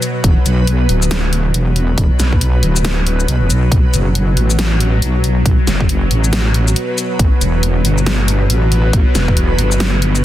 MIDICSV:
0, 0, Header, 1, 5, 480
1, 0, Start_track
1, 0, Key_signature, 2, "minor"
1, 0, Tempo, 434783
1, 264, Time_signature, 4, 2, 24, 8
1, 11314, End_track
2, 0, Start_track
2, 0, Title_t, "Synth texture"
2, 0, Program_c, 0, 99
2, 0, Note_on_c, 0, 71, 92
2, 4090, Note_off_c, 0, 71, 0
2, 4103, Note_on_c, 0, 71, 90
2, 11314, Note_off_c, 0, 71, 0
2, 11314, End_track
3, 0, Start_track
3, 0, Title_t, "Synth drone"
3, 0, Program_c, 1, 95
3, 0, Note_on_c, 1, 47, 81
3, 0, Note_on_c, 1, 54, 85
3, 4094, Note_off_c, 1, 47, 0
3, 4094, Note_off_c, 1, 54, 0
3, 4107, Note_on_c, 1, 47, 84
3, 4108, Note_on_c, 1, 54, 83
3, 11314, Note_off_c, 1, 47, 0
3, 11314, Note_off_c, 1, 54, 0
3, 11314, End_track
4, 0, Start_track
4, 0, Title_t, "Wobble bass"
4, 0, Program_c, 2, 39
4, 263, Note_on_c, 2, 28, 102
4, 398, Note_off_c, 2, 28, 0
4, 504, Note_on_c, 2, 35, 84
4, 972, Note_off_c, 2, 35, 0
4, 983, Note_on_c, 2, 26, 96
4, 1691, Note_off_c, 2, 26, 0
4, 1703, Note_on_c, 2, 28, 89
4, 2172, Note_off_c, 2, 28, 0
4, 2182, Note_on_c, 2, 28, 102
4, 2317, Note_off_c, 2, 28, 0
4, 2423, Note_on_c, 2, 35, 84
4, 2891, Note_off_c, 2, 35, 0
4, 2904, Note_on_c, 2, 26, 93
4, 3612, Note_off_c, 2, 26, 0
4, 3623, Note_on_c, 2, 35, 94
4, 3769, Note_on_c, 2, 28, 84
4, 3786, Note_off_c, 2, 35, 0
4, 3863, Note_on_c, 2, 35, 92
4, 3880, Note_off_c, 2, 28, 0
4, 4088, Note_off_c, 2, 35, 0
4, 4102, Note_on_c, 2, 35, 102
4, 4237, Note_off_c, 2, 35, 0
4, 4344, Note_on_c, 2, 30, 84
4, 4812, Note_off_c, 2, 30, 0
4, 4823, Note_on_c, 2, 33, 91
4, 5532, Note_off_c, 2, 33, 0
4, 5542, Note_on_c, 2, 35, 87
4, 6011, Note_off_c, 2, 35, 0
4, 6023, Note_on_c, 2, 35, 102
4, 6158, Note_off_c, 2, 35, 0
4, 6264, Note_on_c, 2, 30, 85
4, 6732, Note_off_c, 2, 30, 0
4, 6742, Note_on_c, 2, 33, 92
4, 7451, Note_off_c, 2, 33, 0
4, 7942, Note_on_c, 2, 33, 102
4, 8077, Note_off_c, 2, 33, 0
4, 8181, Note_on_c, 2, 28, 85
4, 8651, Note_off_c, 2, 28, 0
4, 8661, Note_on_c, 2, 31, 93
4, 9370, Note_off_c, 2, 31, 0
4, 9381, Note_on_c, 2, 33, 87
4, 9851, Note_off_c, 2, 33, 0
4, 9863, Note_on_c, 2, 33, 104
4, 9998, Note_off_c, 2, 33, 0
4, 10101, Note_on_c, 2, 28, 86
4, 10570, Note_off_c, 2, 28, 0
4, 10582, Note_on_c, 2, 31, 91
4, 11291, Note_off_c, 2, 31, 0
4, 11314, End_track
5, 0, Start_track
5, 0, Title_t, "Drums"
5, 26, Note_on_c, 9, 42, 49
5, 26, Note_on_c, 9, 82, 60
5, 136, Note_off_c, 9, 42, 0
5, 136, Note_off_c, 9, 82, 0
5, 264, Note_on_c, 9, 36, 121
5, 265, Note_on_c, 9, 42, 78
5, 374, Note_off_c, 9, 36, 0
5, 375, Note_off_c, 9, 42, 0
5, 505, Note_on_c, 9, 42, 52
5, 505, Note_on_c, 9, 82, 55
5, 615, Note_off_c, 9, 42, 0
5, 615, Note_off_c, 9, 82, 0
5, 744, Note_on_c, 9, 42, 80
5, 855, Note_off_c, 9, 42, 0
5, 984, Note_on_c, 9, 42, 51
5, 1094, Note_off_c, 9, 42, 0
5, 1130, Note_on_c, 9, 82, 62
5, 1225, Note_on_c, 9, 38, 110
5, 1225, Note_on_c, 9, 42, 76
5, 1241, Note_off_c, 9, 82, 0
5, 1336, Note_off_c, 9, 38, 0
5, 1336, Note_off_c, 9, 42, 0
5, 1465, Note_on_c, 9, 42, 51
5, 1575, Note_off_c, 9, 42, 0
5, 1703, Note_on_c, 9, 42, 81
5, 1814, Note_off_c, 9, 42, 0
5, 1942, Note_on_c, 9, 42, 51
5, 2053, Note_off_c, 9, 42, 0
5, 2182, Note_on_c, 9, 36, 121
5, 2182, Note_on_c, 9, 42, 82
5, 2292, Note_off_c, 9, 36, 0
5, 2293, Note_off_c, 9, 42, 0
5, 2424, Note_on_c, 9, 38, 59
5, 2424, Note_on_c, 9, 42, 56
5, 2424, Note_on_c, 9, 82, 54
5, 2534, Note_off_c, 9, 38, 0
5, 2534, Note_off_c, 9, 42, 0
5, 2534, Note_off_c, 9, 82, 0
5, 2568, Note_on_c, 9, 36, 61
5, 2664, Note_on_c, 9, 42, 80
5, 2678, Note_off_c, 9, 36, 0
5, 2774, Note_off_c, 9, 42, 0
5, 2902, Note_on_c, 9, 42, 55
5, 3012, Note_off_c, 9, 42, 0
5, 3049, Note_on_c, 9, 82, 66
5, 3142, Note_on_c, 9, 38, 110
5, 3142, Note_on_c, 9, 42, 77
5, 3159, Note_off_c, 9, 82, 0
5, 3253, Note_off_c, 9, 38, 0
5, 3253, Note_off_c, 9, 42, 0
5, 3384, Note_on_c, 9, 42, 54
5, 3495, Note_off_c, 9, 42, 0
5, 3531, Note_on_c, 9, 82, 58
5, 3626, Note_on_c, 9, 42, 84
5, 3641, Note_off_c, 9, 82, 0
5, 3736, Note_off_c, 9, 42, 0
5, 3866, Note_on_c, 9, 42, 54
5, 3866, Note_on_c, 9, 82, 65
5, 3976, Note_off_c, 9, 42, 0
5, 3976, Note_off_c, 9, 82, 0
5, 4102, Note_on_c, 9, 36, 125
5, 4105, Note_on_c, 9, 42, 80
5, 4213, Note_off_c, 9, 36, 0
5, 4216, Note_off_c, 9, 42, 0
5, 4345, Note_on_c, 9, 42, 55
5, 4345, Note_on_c, 9, 82, 53
5, 4456, Note_off_c, 9, 42, 0
5, 4456, Note_off_c, 9, 82, 0
5, 4584, Note_on_c, 9, 42, 83
5, 4695, Note_off_c, 9, 42, 0
5, 4824, Note_on_c, 9, 42, 57
5, 4934, Note_off_c, 9, 42, 0
5, 4970, Note_on_c, 9, 82, 66
5, 5064, Note_on_c, 9, 38, 114
5, 5064, Note_on_c, 9, 42, 82
5, 5081, Note_off_c, 9, 82, 0
5, 5174, Note_off_c, 9, 38, 0
5, 5174, Note_off_c, 9, 42, 0
5, 5304, Note_on_c, 9, 42, 57
5, 5415, Note_off_c, 9, 42, 0
5, 5545, Note_on_c, 9, 42, 85
5, 5655, Note_off_c, 9, 42, 0
5, 5784, Note_on_c, 9, 42, 54
5, 5894, Note_off_c, 9, 42, 0
5, 6023, Note_on_c, 9, 36, 127
5, 6025, Note_on_c, 9, 42, 83
5, 6133, Note_off_c, 9, 36, 0
5, 6135, Note_off_c, 9, 42, 0
5, 6264, Note_on_c, 9, 38, 64
5, 6264, Note_on_c, 9, 42, 57
5, 6264, Note_on_c, 9, 82, 53
5, 6374, Note_off_c, 9, 38, 0
5, 6374, Note_off_c, 9, 42, 0
5, 6374, Note_off_c, 9, 82, 0
5, 6409, Note_on_c, 9, 36, 66
5, 6505, Note_on_c, 9, 42, 84
5, 6519, Note_off_c, 9, 36, 0
5, 6615, Note_off_c, 9, 42, 0
5, 6744, Note_on_c, 9, 42, 56
5, 6854, Note_off_c, 9, 42, 0
5, 6890, Note_on_c, 9, 82, 63
5, 6985, Note_on_c, 9, 38, 122
5, 6985, Note_on_c, 9, 42, 82
5, 7001, Note_off_c, 9, 82, 0
5, 7096, Note_off_c, 9, 38, 0
5, 7096, Note_off_c, 9, 42, 0
5, 7224, Note_on_c, 9, 42, 55
5, 7335, Note_off_c, 9, 42, 0
5, 7372, Note_on_c, 9, 82, 55
5, 7465, Note_on_c, 9, 42, 84
5, 7482, Note_off_c, 9, 82, 0
5, 7576, Note_off_c, 9, 42, 0
5, 7706, Note_on_c, 9, 42, 55
5, 7706, Note_on_c, 9, 82, 59
5, 7816, Note_off_c, 9, 42, 0
5, 7816, Note_off_c, 9, 82, 0
5, 7942, Note_on_c, 9, 36, 127
5, 7944, Note_on_c, 9, 42, 83
5, 8052, Note_off_c, 9, 36, 0
5, 8054, Note_off_c, 9, 42, 0
5, 8184, Note_on_c, 9, 42, 56
5, 8184, Note_on_c, 9, 82, 52
5, 8295, Note_off_c, 9, 42, 0
5, 8295, Note_off_c, 9, 82, 0
5, 8424, Note_on_c, 9, 42, 81
5, 8534, Note_off_c, 9, 42, 0
5, 8664, Note_on_c, 9, 42, 56
5, 8774, Note_off_c, 9, 42, 0
5, 8809, Note_on_c, 9, 82, 60
5, 8903, Note_on_c, 9, 38, 121
5, 8903, Note_on_c, 9, 42, 79
5, 8920, Note_off_c, 9, 82, 0
5, 9014, Note_off_c, 9, 38, 0
5, 9014, Note_off_c, 9, 42, 0
5, 9143, Note_on_c, 9, 42, 56
5, 9253, Note_off_c, 9, 42, 0
5, 9383, Note_on_c, 9, 42, 85
5, 9493, Note_off_c, 9, 42, 0
5, 9624, Note_on_c, 9, 42, 52
5, 9734, Note_off_c, 9, 42, 0
5, 9862, Note_on_c, 9, 36, 127
5, 9862, Note_on_c, 9, 42, 81
5, 9973, Note_off_c, 9, 36, 0
5, 9973, Note_off_c, 9, 42, 0
5, 10102, Note_on_c, 9, 38, 64
5, 10102, Note_on_c, 9, 42, 53
5, 10102, Note_on_c, 9, 82, 51
5, 10213, Note_off_c, 9, 38, 0
5, 10213, Note_off_c, 9, 42, 0
5, 10213, Note_off_c, 9, 82, 0
5, 10249, Note_on_c, 9, 36, 65
5, 10342, Note_on_c, 9, 42, 78
5, 10359, Note_off_c, 9, 36, 0
5, 10452, Note_off_c, 9, 42, 0
5, 10582, Note_on_c, 9, 42, 52
5, 10693, Note_off_c, 9, 42, 0
5, 10728, Note_on_c, 9, 82, 59
5, 10821, Note_on_c, 9, 38, 122
5, 10821, Note_on_c, 9, 42, 76
5, 10838, Note_off_c, 9, 82, 0
5, 10932, Note_off_c, 9, 38, 0
5, 10932, Note_off_c, 9, 42, 0
5, 11063, Note_on_c, 9, 42, 53
5, 11173, Note_off_c, 9, 42, 0
5, 11211, Note_on_c, 9, 82, 50
5, 11314, Note_off_c, 9, 82, 0
5, 11314, End_track
0, 0, End_of_file